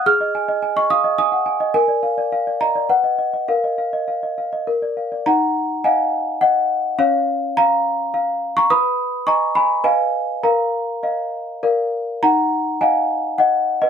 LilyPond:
\new Staff \with { instrumentName = "Celesta" } { \time 3/4 \key ees \minor \tempo 4 = 104 << { f'''4~ f'''16 des'''16 ees'''8 ees'''8 r8 | aes''4. bes''8 fis''4 | f''2~ f''8 r8 | <ges'' bes''>4 <f'' aes''>4 <ees'' ges''>4 |
<des'' f''>4 <f'' bes''>4.~ <f'' bes''>16 <bes'' des'''>16 | <ces''' ees'''>4 <bes'' des'''>8 <aes'' ces'''>8 <f'' aes''>4 | <f'' bes''>2~ <f'' bes''>8 r8 | <ges'' bes''>4 <f'' aes''>4 <ees'' ges''>8. <ces'' ees''>16 | } \\ { aes'16 ees''16 aes''16 ees''16 aes''16 ees''16 f''16 ees''16 aes''16 ges''16 aes''16 ees''16 | bes'16 d''16 f''16 d''16 f''16 d''16 ees''16 d''16 b'16 dis''16 dis''16 dis''16 | bes'16 ees''16 f''16 ees''16 f''16 ees''16 f''16 ees''16 bes'16 d''16 f''16 d''16 | ees'4 <ees'' ges''>4 r4 |
des'4 r4 f''4 | ces''4 <ees'' aes''>4 <ces'' ees''>4 | bes'4 <ees'' f''>4 <bes' d'' f''>4 | ees'4 <ees'' ges''>4 r4 | } >> }